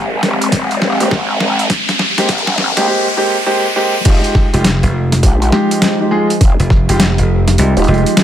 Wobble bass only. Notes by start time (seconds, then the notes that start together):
Already playing: G#1
0.23 D#1
1.11 G#1
2.29 G#1
2.58 G#1
2.77 C2
4.05 F1
5.23 A#1
6.41 F1
7.77 D#1